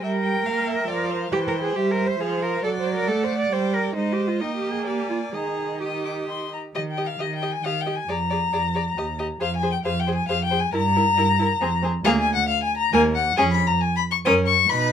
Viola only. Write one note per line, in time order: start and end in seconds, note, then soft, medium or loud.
0.02 0.45 G3 medium
0.46 0.88 A#3 medium
0.88 1.32 F3 medium
1.32 1.75 E3 medium
1.76 2.19 G3 medium
2.20 2.63 F3 medium
2.64 3.10 F#3 medium
3.08 3.51 A3 medium
3.52 3.95 G3 medium
3.96 4.42 G#3 medium
4.41 5.35 A#3 medium
5.33 6.55 D#3 soft
6.75 6.83 G4 soft
6.98 7.06 G4 soft
7.20 7.28 G4 soft
7.42 7.50 G4 soft
7.65 7.73 G4 medium
7.87 7.95 G4 soft
8.09 8.17 G#4 medium
8.32 8.40 G#4 medium
8.54 8.62 G#4 soft
8.75 8.83 G#4 soft
8.97 9.05 G4 medium
9.19 9.27 G4 medium
9.40 9.48 G#4 medium
9.63 9.71 G#4 medium
9.85 9.93 G#4 medium
10.08 10.16 G#4 medium
10.30 10.38 G#4 medium
10.51 10.59 G#4 medium
10.73 10.81 E4 medium
10.96 11.04 E4 medium
11.17 11.25 E4 medium
11.39 11.47 E4 medium
11.61 11.69 C4 medium
11.83 11.91 C4 medium
12.05 12.25 A#3 medium
12.93 13.14 A#3 medium
13.38 13.58 C#4 medium
14.26 14.47 C#4 medium
14.70 14.92 D#4 medium